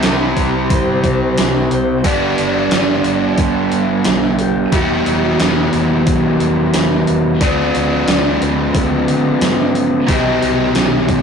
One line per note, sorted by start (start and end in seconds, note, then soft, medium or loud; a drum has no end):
0.00 2.02 C3 medium
0.00 2.05 G3 medium
0.00 2.03 C4 medium
0.00 2.03 E4 loud
0.00 snare loud
0.00 open hi-hat medium
0.04 0.33 C2 medium
0.04 0.74 B4 medium
0.37 0.66 C2 medium
0.37 kick medium
0.37 open hi-hat soft
0.70 1.00 G1 medium
0.70 1.39 C5 medium
0.70 kick loud
0.70 open hi-hat medium
1.04 1.33 C2 medium
1.04 kick medium
1.04 open hi-hat medium
1.38 1.67 C2 medium
1.38 1.73 B4 medium
1.38 snare loud
1.38 open hi-hat medium
1.71 2.01 C2 medium
1.71 2.03 C5 medium
1.71 open hi-hat medium
2.04 2.34 G1 medium
2.04 4.71 G2 medium
2.04 4.71 D3 loud
2.04 4.73 G3 medium
2.04 4.72 B3 medium
2.04 4.74 D4 loud
2.04 2.72 D5 medium
2.04 kick loud
2.04 open hi-hat medium
2.38 2.68 G1 medium
2.38 open hi-hat medium
2.71 3.01 G1 medium
2.71 3.40 D5 medium
2.71 snare loud
2.71 open hi-hat medium
3.04 3.34 G1 medium
3.04 open hi-hat medium
3.38 3.68 G1 medium
3.38 4.09 B4 medium
3.38 kick loud
3.38 open hi-hat medium
3.72 4.02 G2 medium
3.72 open hi-hat medium
4.04 4.64 B1 medium
4.04 4.41 A4 medium
4.04 snare loud
4.04 open hi-hat medium
4.39 4.74 G4 medium
4.39 open hi-hat soft
4.72 5.02 E1 medium
4.72 7.38 E3 medium
4.72 7.41 G3 loud
4.72 7.39 B3 medium
4.72 7.40 E4 medium
4.72 5.23 G4 medium
4.72 kick loud
4.72 open hi-hat medium
5.06 5.36 E1 medium
5.06 open hi-hat medium
5.23 5.43 F#4 medium
5.40 5.69 E1 medium
5.40 6.03 B4 medium
5.40 snare loud
5.40 open hi-hat medium
5.73 6.03 E1 medium
5.73 open hi-hat soft
6.07 6.36 B1 medium
6.07 kick loud
6.07 open hi-hat medium
6.40 6.70 E1 medium
6.40 open hi-hat medium
6.74 7.04 E1 medium
6.74 7.41 B4 medium
6.74 snare loud
6.74 open hi-hat medium
7.07 7.37 E1 medium
7.07 open hi-hat medium
7.41 7.70 D2 medium
7.41 10.06 D3 medium
7.41 10.07 A3 loud
7.41 10.07 C4 loud
7.41 10.08 F#4 medium
7.41 8.08 D5 loud
7.41 kick loud
7.41 open hi-hat medium
7.75 8.04 D2 medium
7.75 open hi-hat medium
8.07 8.37 D2 medium
8.07 8.42 D5 loud
8.07 snare loud
8.07 open hi-hat medium
8.41 8.70 D2 medium
8.41 8.77 B4 medium
8.41 open hi-hat medium
8.75 9.04 D2 medium
8.75 10.10 A4 medium
8.75 kick loud
8.75 open hi-hat medium
9.08 9.38 D3 medium
9.08 open hi-hat medium
9.41 10.00 G2 medium
9.41 snare loud
9.41 open hi-hat medium
9.75 open hi-hat medium
10.07 10.38 C2 medium
10.07 11.22 C3 medium
10.07 11.22 E3 medium
10.07 11.22 G3 medium
10.07 11.22 C4 medium
10.07 11.22 E4 medium
10.07 11.22 G4 medium
10.07 kick loud
10.07 open hi-hat medium
10.42 10.72 C2 medium
10.42 open hi-hat medium
10.75 11.05 C2 medium
10.75 snare loud
10.75 open hi-hat medium
11.09 11.22 C2 medium
11.09 kick medium
11.09 open hi-hat soft